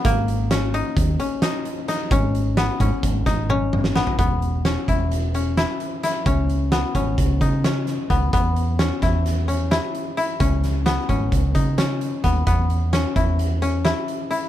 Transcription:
<<
  \new Staff \with { instrumentName = "Koto" } { \time 9/8 \key e \lydian \tempo 4. = 87 ais4 cis'8 dis'4 cis'8 dis'4 dis'8 | cis'4 b8 cis'4 dis'8 cis'4 b8 | b4 cis'8 e'4 cis'8 e'4 e'8 | cis'4 b8 cis'4 dis'8 cis'4 b8 |
b4 cis'8 e'4 cis'8 e'4 e'8 | cis'4 b8 cis'4 dis'8 cis'4 b8 | b4 cis'8 e'4 cis'8 e'4 e'8 | }
  \new Staff \with { instrumentName = "Fretless electric bass" } { \clef bass \time 9/8 \key e \lydian gis,,2 dis,8 r2 | gis,,4. gis,16 r16 gis,,8 gis,,2 | e,,4. e,,2 r4 | cis,4. gis,,8 cis,8 cis4. cis,8 |
e,4. e,2 r4 | cis,4. gis,,8 cis,8 cis4. dis,8 | e,4. e,2 r4 | }
  \new DrumStaff \with { instrumentName = "Drums" } \drummode { \time 9/8 <hh bd>8 hh8 <hh sn>8 hh8 <hh bd>8 hh8 <hh sn>8 hh8 <hh sn>8 | <hh bd>8 hh8 <hh sn>8 <hh bd>8 <hh bd>8 <hh bd sn>8 tommh8 toml16 sn16 sn16 tomfh16 | <hh bd>8 hh8 <hh sn>8 <hh bd>8 hh8 hh8 <hh sn>8 hh8 <hh sn>8 | <hh bd>8 hh8 <hh sn>8 <hh bd>8 <hh bd>8 <hh bd>8 <hh sn>8 <hh sn>8 <hh bd>8 |
<hh bd>8 hh8 <hh sn>8 <hh bd sn>8 <hh sn>8 hh8 <hh sn>8 hh8 hh8 | <hh bd>8 <hh sn>8 <hh sn>8 <hh bd>8 <hh bd>8 <hh bd>8 <hh sn>8 hh8 <hh bd>8 | <hh bd>8 hh8 <hh sn>8 <hh bd>8 hh8 hh8 <hh sn>8 hh8 hh8 | }
>>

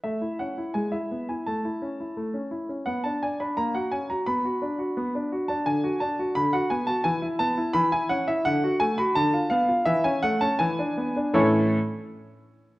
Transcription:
\new Staff \with { instrumentName = "Grand piano" } { \time 2/4 \key a \major \tempo 4 = 85 << { e''8 fis''8 gis''16 e''8 gis''16 | a''4. r8 | fis''16 a''16 gis''16 b''16 ais''16 fis''16 gis''16 ais''16 | b''4.~ b''16 a''16 |
gis''8 a''8 b''16 fis''16 gis''16 a''16 | gis''8 a''8 b''16 gis''16 fis''16 e''16 | fis''8 gis''16 b''16 a''8 f''8 | e''16 gis''16 fis''16 a''16 gis''4 |
<a, e cis' e' a' cis'' cis'''>8 r4. | } \\ { a16 e'16 cis'16 e'16 gis16 e'16 b16 e'16 | a16 e'16 cis'16 e'16 a16 cis'16 e'16 cis'16 | b16 d'16 d''16 d'16 ais16 fis'16 cis'16 fis'16 | b16 fis'16 d'16 fis'16 b16 d'16 fis'16 d'16 |
d16 fis'16 d'16 fis'16 d16 fis'16 b16 fis'16 | e16 e'16 b16 e'16 e16 e'16 cis'16 e'16 | d16 fis'16 a16 fis'16 d16 f'16 b16 f'16 | e16 cis'16 a16 cis'16 e16 d'16 b16 d'16 |
r2 | } >> }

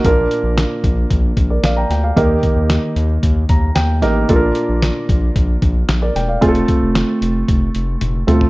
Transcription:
<<
  \new Staff \with { instrumentName = "Grand piano" } { \time 4/4 \key bes \major \tempo 4 = 113 << { r2 r8. <bes' d''>16 <d'' f''>16 <g'' bes''>16 g''16 <d'' f''>16~ | <d'' f''>16 r2 r16 bes''8 g''4 | r2. r16 <bes' d''>16 g''16 <d'' f''>16~ | <d'' f''>16 r2. r8. | } \\ { <bes, bes d' f' bes'>4. r2 r8 | <ees bes ees' g' bes'>4. r2 <bes ees' g' bes'>8 | <bes, bes d' f' a' bes'>4. r2 r8 | <a c' f' aes' a'>4. r2 <a c' f' a'>8 | } >> }
  \new Staff \with { instrumentName = "Analog synth bass" } { \clef bass \time 4/4 \key bes \major bes,,8 r16 bes,,8 r16 bes,,8 bes,,8 bes,,8 bes,,8 d,8 | ees,8 r16 ees,8 r16 ees,8 ees,8 ees,8 ees,8 a,,8 | bes,,8 r16 bes,,8 r16 bes,,8 bes,,8 bes,,8 bes,,8 e,,8 | f,,8 r16 f,,8 r16 f,,8 f,,8 f,,8 f,,8 d,8 | }
  \new DrumStaff \with { instrumentName = "Drums" } \drummode { \time 4/4 <hh bd>8 hh8 <hc hh sn>8 <hh bd>8 <hh bd>8 <hh bd>8 <hc hh sn>8 <hh sn>8 | <hh bd>8 <hh bd>8 <hc hh sn>8 hh8 <hh bd>8 <hh bd>8 <hc hh sn>8 <hh sn>8 | <hh bd>8 hh8 <hc hh sn>8 <hh bd>8 <hh bd>8 <hh bd>8 <hc hh sn>8 <hh sn>8 | <hh bd>16 hh16 <hh bd>8 <hc hh sn>8 hh8 <hh bd>8 hh8 <hh tommh>8 <hh toml>16 tomfh16 | }
>>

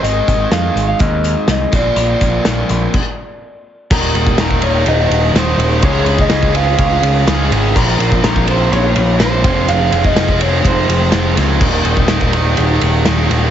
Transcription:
<<
  \new Staff \with { instrumentName = "Clean electric guitar" } { \time 4/4 \key ees \mixolydian \tempo 4 = 124 ees''4 f''8. f''16 ees''4 ees''8 d''8~ | d''2.~ d''8 r8 | bes'4 bes'8 des''8 ees''4 c''4 | des''8. ees''8. f''8 f''4. r8 |
bes'4 bes'8 c''8 des''8 des''8 c''4 | f''8. ees''8. des''8 c''4. r8 | r1 | }
  \new Staff \with { instrumentName = "Overdriven electric guitar" } { \time 4/4 \key ees \mixolydian <aes, ees aes c' ees'>2.~ <aes, ees aes c' ees'>8 <bes, f bes c' f'>8~ | <bes, f bes c' f'>2 r2 | <ees, bes, ees g bes ees'>8 <ees g bes ees'>8 <ees g bes ees'>8 <ees g bes ees'>4. <ees, bes, ees g bes ees'>8 <ees g bes ees'>8 | <des aes des' f' aes'>8 <des' f' aes'>8 <aes des' f' aes'>8 <des' f' aes'>4. <des aes des' f' aes'>8 <des' f' aes'>8 |
<bes, f bes c' f'>8 <bes c' f'>8 <f bes c' f'>8 <bes c' f'>4. <bes, f bes c' f'>8 <f, c f aes c' f'>8 | <f, c f aes c' f'>8 <f aes c' f'>8 <f aes c' f'>8 <f aes c' f'>4. <f, c f aes c' f'>8 <f aes c' f'>8 | <ees, bes, ees g bes ees'>8 <ees g bes ees'>8 <ees g bes ees'>8 <ees g bes ees'>4. <ees, bes, ees g bes ees'>8 <ees g bes ees'>8 | }
  \new Staff \with { instrumentName = "Picked electric bass" } { \clef bass \time 4/4 \key ees \mixolydian aes,,8 aes,,8 f,8 aes,,8 ees,4 c,8 bes,,8 | bes,,8 bes,,8 bes,,8 bes,,8 r2 | ees,,8 ees,,8 ees,,4 ees,,8 ees,,8 ees,,8 ees,,8 | des,8 des,8 des,4 des,8 des,8 des,8 aes,,8 |
bes,,8 bes,,8 bes,,4 bes,,8 bes,,8 bes,,8 f,,8 | f,,8 f,,8 f,,4 f,,8 f,,8 f,,8 des,8 | ees,,8 ees,,8 ees,,4 ees,,8 ees,,8 ees,,8 ees,,8 | }
  \new DrumStaff \with { instrumentName = "Drums" } \drummode { \time 4/4 hh8 <hh bd>8 <hh sn>8 hh8 <hh bd>8 hh8 <hh sn>8 <hh bd>8 | hh8 <hh bd>8 <hh sn>8 hh8 <cymc bd>4 r4 | <cymc bd>8 cymr16 bd16 <cymr sn>16 bd16 cymr8 cymr8 cymr8 <cymr sn>8 cymr8 | <bd cymr>8 cymr16 bd16 <cymr sn>16 bd16 cymr8 <bd cymr>8 cymr8 <cymr sn>8 <cymr sn>8 |
<cymc bd>8 cymr16 bd16 <cymr sn>16 bd16 cymr8 cymr8 cymr8 <cymr sn>8 <bd cymr>8 | cymr8 cymr16 bd16 <cymr sn>16 bd16 cymr8 <bd cymr>8 cymr8 <cymr sn>8 <cymr sn>8 | <cymc bd>8 cymr16 bd16 <cymr sn>16 bd16 cymr8 cymr8 cymr8 <cymr sn>8 <cymr sn>8 | }
>>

